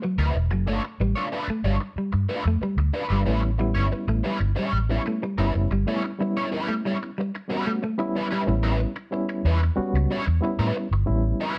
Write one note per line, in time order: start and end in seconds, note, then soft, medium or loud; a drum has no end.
0.02 0.16 F#3 medium
0.02 muted overdriven electric guitar stroke soft
0.18 0.30 D2 medium
0.18 0.35 F#3 medium
0.18 0.36 C4 medium
0.18 0.36 E4 medium
0.18 0.35 B4 medium
0.18 muted clean electric guitar stroke soft
0.35 0.50 E1 medium
0.35 muted overdriven electric guitar stroke soft
0.50 0.66 F#1 medium
0.50 0.65 F#3 medium
0.50 muted overdriven electric guitar stroke soft
0.66 0.78 G1 loud
0.66 0.81 A3 medium
0.66 0.81 D4 medium
0.66 0.81 F4 medium
0.66 0.81 C#5 medium
0.84 muted overdriven electric guitar stroke soft
1.00 1.12 A1 medium
1.00 1.13 G3 medium
1.00 muted overdriven electric guitar stroke soft
1.16 1.27 A3 medium
1.16 1.27 D4 medium
1.16 1.27 F4 medium
1.16 1.26 C#5 medium
1.16 muted clean electric guitar stroke soft
1.32 1.46 A3 medium
1.32 1.46 D4 medium
1.32 1.46 F4 medium
1.32 1.46 B4 medium
1.32 muted clean electric guitar stroke soft
1.48 1.62 A3 medium
1.48 muted fingered electric bass stroke soft
1.48 muted overdriven electric guitar stroke medium
1.64 1.76 G1 loud
1.64 1.78 G3 medium
1.64 1.75 A3 medium
1.64 1.75 D4 medium
1.64 1.75 F4 medium
1.64 1.76 C#5 medium
1.80 muted overdriven electric guitar stroke soft
1.96 2.11 G3 medium
1.96 muted fingered electric bass stroke soft
2.12 2.26 G2 medium
2.12 muted overdriven electric guitar stroke soft
2.29 2.43 A3 medium
2.29 2.43 D4 medium
2.29 2.43 F4 medium
2.29 2.43 B4 medium
2.29 muted clean electric guitar stroke soft
2.45 2.58 F2 medium
2.45 2.60 A3 medium
2.45 muted overdriven electric guitar stroke soft
2.61 2.76 G3 medium
2.61 muted fingered electric bass stroke soft
2.61 muted overdriven electric guitar stroke soft
2.77 2.89 D2 medium
2.77 muted overdriven electric guitar stroke soft
2.77 muted clean electric guitar stroke soft
2.93 3.05 A3 medium
2.93 3.05 D4 medium
2.93 3.05 F4 medium
2.93 3.06 B4 medium
3.09 3.22 G1 loud
3.09 3.24 G3 medium
3.09 3.21 A3 medium
3.09 3.21 D4 soft
3.09 3.21 F4 medium
3.09 3.21 B4 medium
3.25 3.77 A1 loud
3.25 3.40 G3 medium
3.25 3.49 G3 medium
3.25 3.41 A3 medium
3.25 3.49 B3 medium
3.25 3.40 C#4 medium
3.25 3.50 C#4 medium
3.25 3.40 E4 medium
3.25 3.50 E4 medium
3.25 3.40 B4 medium
3.42 muted overdriven electric guitar stroke medium
3.58 4.49 G3 medium
3.58 3.73 G3 medium
3.58 4.50 B3 medium
3.58 4.50 C#4 medium
3.58 4.50 E4 medium
3.58 muted overdriven electric guitar stroke soft
3.75 3.88 G1 medium
3.75 3.87 G3 medium
3.75 3.86 C#4 soft
3.75 3.86 E4 medium
3.75 3.86 C#5 medium
3.75 muted clean electric guitar stroke soft
3.92 muted overdriven electric guitar stroke medium
3.92 muted fingered electric bass stroke soft
3.92 muted clean electric guitar stroke soft
4.08 4.20 A1 medium
4.08 4.22 A3 medium
4.08 muted overdriven electric guitar stroke soft
4.24 4.38 G3 medium
4.24 4.38 C#4 medium
4.24 4.38 E4 medium
4.24 4.38 B4 medium
4.40 4.53 G1 medium
4.40 muted overdriven electric guitar stroke medium
4.56 4.77 G3 medium
4.56 4.71 G3 medium
4.56 4.72 C#4 loud
4.56 4.72 E4 medium
4.56 4.73 C#5 loud
4.73 4.97 A1 medium
4.73 muted overdriven electric guitar stroke soft
4.89 5.24 G3 medium
4.89 5.00 G3 medium
4.89 5.24 B3 medium
4.89 5.24 C#4 medium
4.89 5.01 C#4 medium
4.89 5.01 E4 medium
4.89 5.24 E4 medium
4.89 5.01 C#5 medium
4.89 muted clean electric guitar stroke soft
5.06 5.20 A3 medium
5.06 muted overdriven electric guitar stroke soft
5.22 5.36 G3 medium
5.22 muted overdriven electric guitar stroke soft
5.38 5.50 G1 loud
5.38 5.72 G3 medium
5.38 5.54 G3 medium
5.38 5.72 B3 medium
5.38 5.54 C#4 medium
5.38 5.72 C#4 medium
5.38 5.54 E4 medium
5.38 5.73 E4 loud
5.38 5.54 B4 medium
5.38 muted clean electric guitar stroke soft
5.55 5.67 F#1 medium
5.55 muted overdriven electric guitar stroke medium
5.71 5.83 G1 medium
5.71 5.85 G3 medium
5.71 muted overdriven electric guitar stroke soft
5.86 6.10 G3 medium
5.86 6.01 G3 medium
5.86 6.01 A3 medium
5.86 6.10 B3 medium
5.86 6.10 C#4 medium
5.86 6.01 C#4 medium
5.86 6.10 E4 medium
5.86 6.02 E4 medium
5.86 6.02 C#5 medium
6.04 muted overdriven electric guitar stroke medium
6.19 7.09 G3 medium
6.19 6.33 G3 medium
6.19 7.10 B3 medium
6.19 7.10 C#4 medium
6.19 7.10 E4 medium
6.19 muted overdriven electric guitar stroke medium
6.37 6.48 G3 medium
6.37 6.48 C#4 medium
6.37 6.47 E4 medium
6.37 6.47 C#5 medium
6.37 muted clean electric guitar stroke soft
6.52 6.72 G3 medium
6.52 6.69 C#4 medium
6.52 6.69 E4 loud
6.52 6.68 B4 loud
6.52 muted clean electric guitar stroke soft
6.68 6.81 A3 medium
6.68 muted overdriven electric guitar stroke medium
6.85 6.98 G3 medium
6.85 6.96 G3 medium
6.85 6.96 C#4 medium
6.85 6.96 E4 medium
6.85 6.96 C#5 medium
7.03 muted overdriven electric guitar stroke soft
7.18 7.31 G3 medium
7.18 muted overdriven electric guitar stroke soft
7.35 muted overdriven electric guitar stroke soft
7.48 7.83 G3 medium
7.48 7.70 G3 medium
7.48 7.83 B3 medium
7.48 7.83 C#4 medium
7.48 7.67 C#4 medium
7.48 7.66 E4 medium
7.48 7.83 F#4 medium
7.48 7.66 B4 loud
7.48 muted clean electric guitar stroke soft
7.67 7.79 A3 medium
7.67 muted overdriven electric guitar stroke soft
7.83 7.96 A3 medium
7.83 muted overdriven electric guitar stroke soft
7.98 8.32 G3 medium
7.98 8.32 B3 medium
7.98 8.32 C#4 medium
7.98 8.32 E4 loud
7.98 muted overdriven electric guitar stroke medium
7.98 muted clean electric guitar stroke soft
8.16 8.26 G3 medium
8.16 8.26 C#4 medium
8.16 8.26 E4 medium
8.16 8.26 B4 medium
8.31 8.45 G3 medium
8.31 8.42 G3 medium
8.31 8.42 C#4 medium
8.31 8.42 E4 medium
8.31 8.41 B4 medium
8.46 8.84 A1 loud
8.46 8.92 G3 medium
8.46 8.92 B3 medium
8.46 8.92 C#4 medium
8.46 8.92 E4 medium
8.46 muted overdriven electric guitar stroke soft
8.63 8.78 G3 medium
8.63 8.78 C#4 medium
8.63 8.79 E4 medium
8.63 8.79 B4 medium
8.79 muted overdriven electric guitar stroke medium
8.96 muted overdriven electric guitar stroke medium
9.11 9.56 G3 medium
9.11 9.57 B3 medium
9.11 9.57 C#4 medium
9.11 9.57 E4 medium
9.11 muted overdriven electric guitar stroke soft
9.29 muted overdriven electric guitar stroke soft
9.45 9.69 E2 loud
9.45 9.58 G3 medium
9.45 9.59 C#4 loud
9.45 9.59 E4 medium
9.45 9.59 B4 loud
9.63 muted overdriven electric guitar stroke medium
9.76 10.21 G3 loud
9.76 10.22 B3 medium
9.76 10.22 C#4 medium
9.76 10.22 F#4 loud
9.76 muted fingered electric bass stroke soft
9.94 10.05 C#2 medium
9.94 muted overdriven electric guitar stroke soft
10.11 10.23 G3 medium
10.11 10.24 C#4 medium
10.11 10.24 E4 medium
10.11 10.24 C#5 loud
10.26 10.39 E2 medium
10.26 muted overdriven electric guitar stroke medium
10.41 10.86 G3 medium
10.41 10.86 B3 medium
10.41 10.87 C#4 medium
10.41 10.87 E4 loud
10.41 muted overdriven electric guitar stroke soft
10.59 10.71 A2 loud
10.59 10.75 G3 medium
10.59 10.75 C#4 medium
10.59 10.75 E4 medium
10.59 10.76 B4 medium
10.76 muted overdriven electric guitar stroke soft
10.91 11.03 G1 medium
10.91 muted overdriven electric guitar stroke soft
11.06 11.32 A1 loud
11.06 11.51 G3 medium
11.06 11.51 B3 medium
11.06 11.52 C#4 medium
11.06 11.52 E4 medium
11.40 11.58 G3 medium
11.40 11.58 C#4 medium
11.40 11.58 E4 loud
11.40 11.58 B4 medium